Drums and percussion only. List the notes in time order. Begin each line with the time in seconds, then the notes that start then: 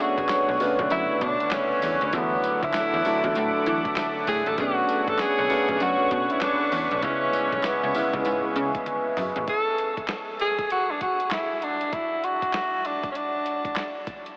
0.18 kick, closed hi-hat
0.29 snare, clap, closed hi-hat, tambourine
0.60 open hi-hat, tambourine
0.79 kick, closed hi-hat
0.90 closed hi-hat, tambourine
1.21 kick, closed hi-hat
1.40 closed hi-hat
1.51 snare, clap, closed hi-hat, tambourine
1.82 open hi-hat, tambourine
2.01 closed hi-hat
2.13 kick, closed hi-hat, tambourine
2.44 closed hi-hat, tambourine
2.63 kick, closed hi-hat
2.73 snare, clap, closed hi-hat, tambourine
3.05 open hi-hat, tambourine
3.24 kick, closed hi-hat
3.35 closed hi-hat, tambourine
3.66 closed hi-hat
3.85 kick, closed hi-hat
3.96 snare, clap, closed hi-hat, tambourine
4.27 kick, open hi-hat, tambourine
4.46 closed hi-hat
4.58 kick, closed hi-hat, tambourine
4.89 closed hi-hat, tambourine
5.08 kick, closed hi-hat
5.19 snare, clap, closed hi-hat, tambourine
5.50 open hi-hat, tambourine
5.69 kick, closed hi-hat
5.80 closed hi-hat, tambourine
6.11 kick, closed hi-hat
6.30 closed hi-hat
6.41 snare, clap, closed hi-hat, tambourine
6.72 open hi-hat, tambourine
6.91 closed hi-hat
7.03 kick, closed hi-hat, tambourine
7.33 closed hi-hat, tambourine
7.52 kick, closed hi-hat
7.63 snare, clap, closed hi-hat, tambourine
7.95 open hi-hat, tambourine
8.13 kick, closed hi-hat
8.25 closed hi-hat, tambourine
8.56 closed hi-hat
8.75 kick, closed hi-hat
8.86 closed hi-hat, high tom
9.17 mid tom, open hi-hat
9.36 closed hi-hat, floor tom
9.48 kick, closed hi-hat
9.78 closed hi-hat
9.97 kick, closed hi-hat
10.08 snare, clap, closed hi-hat
10.40 closed hi-hat
10.59 kick, closed hi-hat
10.70 closed hi-hat
11.01 kick, closed hi-hat
11.20 closed hi-hat
11.31 snare, clap, closed hi-hat
11.62 closed hi-hat
11.81 closed hi-hat
11.93 kick, closed hi-hat
12.24 closed hi-hat
12.42 kick, closed hi-hat
12.53 snare, clap, closed hi-hat
12.85 closed hi-hat
13.03 kick, closed hi-hat
13.15 closed hi-hat
13.46 closed hi-hat
13.65 kick, closed hi-hat
13.76 snare, clap, closed hi-hat
14.07 kick, closed hi-hat
14.26 closed hi-hat